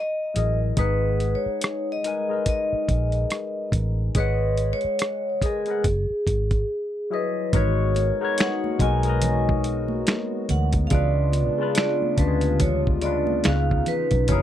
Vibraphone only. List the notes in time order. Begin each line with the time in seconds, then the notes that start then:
Already playing: D#5
0.79 B4
1.35 C#5
1.92 D#5
2.48 D#5
4.17 B4
4.73 C#5
5.43 G#4
7.14 B4
7.55 C#5
8.40 F#5
8.82 G#5
10.51 F#5
10.87 F5
10.93 D5
11.77 D5
12.19 B4
12.61 C#5
13.02 D5
13.45 F5
13.88 B4
14.29 C#5